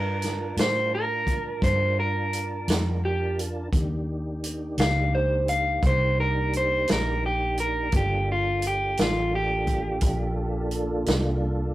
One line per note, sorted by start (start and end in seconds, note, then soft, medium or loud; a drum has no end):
0.00 0.54 G2 medium
0.00 3.68 D4 medium
0.00 3.68 F4 medium
0.00 0.55 A#4 medium
0.00 3.69 A#4 medium
0.00 3.69 A5 medium
0.22 snare soft
0.22 closed hi-hat medium
0.57 1.59 A2 medium
0.57 0.93 C5 medium
0.57 snare medium
0.57 closed hi-hat medium
0.95 1.62 A#4 medium
1.27 kick medium
1.27 closed hi-hat soft
1.62 2.64 G2 medium
1.62 1.97 C5 medium
1.62 kick loud
1.62 closed hi-hat medium
2.00 3.01 A#4 medium
2.33 closed hi-hat medium
2.68 3.70 F2 medium
2.68 snare medium
2.68 closed hi-hat medium
3.05 3.38 G4 medium
3.39 closed hi-hat medium
3.72 4.75 D#2 medium
3.72 7.89 A#3 medium
3.72 7.89 D4 medium
3.72 7.89 D#4 medium
3.72 7.89 G4 medium
3.72 kick loud
3.72 closed hi-hat medium
4.44 closed hi-hat medium
4.78 5.80 C#2 medium
4.78 5.13 F5 medium
4.78 snare medium
4.78 closed hi-hat medium
5.15 5.48 C5 medium
5.48 5.83 F5 medium
5.48 closed hi-hat medium
5.83 6.85 C2 medium
5.83 6.19 C5 medium
5.83 kick loud
5.83 closed hi-hat medium
6.20 6.53 A#4 medium
6.53 6.89 C5 medium
6.53 closed hi-hat soft
6.88 7.91 A#1 medium
6.88 snare loud
6.88 closed hi-hat medium
6.92 7.24 A#4 medium
7.26 7.58 G4 medium
7.57 7.93 A#4 medium
7.57 closed hi-hat medium
7.92 8.95 G1 medium
7.92 11.74 A#3 medium
7.92 11.74 D4 medium
7.92 11.74 F4 medium
7.92 11.74 A4 medium
7.92 kick loud
7.92 closed hi-hat medium
7.96 8.29 G4 medium
8.32 8.64 F4 medium
8.62 closed hi-hat medium
8.67 8.99 G4 medium
8.97 10.00 A1 medium
8.97 snare medium
8.97 closed hi-hat medium
9.02 9.34 F4 medium
9.35 10.70 G4 medium
9.67 kick medium
9.67 closed hi-hat medium
10.01 11.04 A#1 medium
10.01 kick loud
10.01 closed hi-hat medium
10.71 closed hi-hat medium
11.06 11.74 C2 medium
11.06 snare medium
11.06 closed hi-hat medium